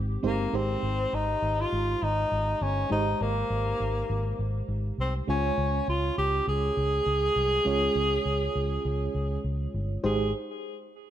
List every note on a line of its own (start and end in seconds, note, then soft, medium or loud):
0.00 0.16 G#1 loud
0.00 0.19 G#3 medium
0.00 0.19 C4 medium
0.00 0.20 D#4 medium
0.00 0.20 G4 medium
0.00 0.20 C5 medium
0.23 0.45 G1 loud
0.23 0.51 G#3 medium
0.23 0.57 A#3 medium
0.23 0.53 C4 medium
0.23 0.52 D#4 medium
0.23 0.53 G4 medium
0.23 0.54 C5 medium
0.52 0.75 G#1 medium
0.52 2.87 G#3 medium
0.52 1.16 C4 loud
0.52 2.87 D#4 medium
0.52 2.87 G4 medium
0.52 2.88 C5 medium
0.83 1.04 G#1 medium
1.13 1.34 G#1 medium
1.13 1.63 D#4 loud
1.42 1.64 G#1 medium
1.61 2.05 F4 loud
1.72 1.94 G#1 loud
2.02 2.24 G#1 loud
2.02 2.64 D#4 loud
2.32 2.53 G#1 medium
2.61 2.83 G1 medium
2.61 2.91 C#4 medium
2.90 3.12 G#1 loud
2.90 5.24 G#3 medium
2.90 5.24 D#4 medium
2.90 3.24 D#4 loud
2.90 5.25 G4 medium
2.90 5.25 C5 medium
3.21 3.42 G#1 medium
3.21 4.40 A#3 medium
3.50 3.72 G#1 loud
3.80 4.02 G#1 medium
4.10 4.31 G#1 loud
4.39 4.61 G#1 loud
4.68 4.90 G#1 medium
4.98 5.20 C2 medium
4.98 5.14 C4 medium
5.27 5.50 C#2 loud
5.27 7.62 G#3 medium
5.27 7.62 C#4 medium
5.27 5.85 C#4 loud
5.27 7.62 F4 medium
5.27 7.63 C#5 medium
5.58 5.79 C#2 loud
5.88 6.09 C#2 loud
5.88 6.16 F4 loud
6.18 6.39 C#2 loud
6.18 6.45 G4 loud
6.48 6.69 C#2 loud
6.48 9.41 G#4 loud
6.77 6.98 C#2 loud
7.06 7.28 C#2 loud
7.36 7.58 C2 medium
7.65 7.87 C#2 loud
7.65 9.99 G#3 medium
7.65 9.99 C#4 medium
7.65 10.00 F4 medium
7.65 10.00 C#5 medium
7.95 8.17 C#2 loud
8.25 8.47 C#2 loud
8.55 8.77 C#2 loud
8.85 9.06 C#2 loud
9.15 9.36 C#2 loud
9.44 9.66 C#2 medium
9.74 9.96 G1 medium
10.04 10.32 G#1 medium
10.04 10.31 G#3 medium
10.04 10.31 D#4 medium
10.04 10.31 G4 medium
10.04 10.32 G#4 medium
10.04 10.31 C5 medium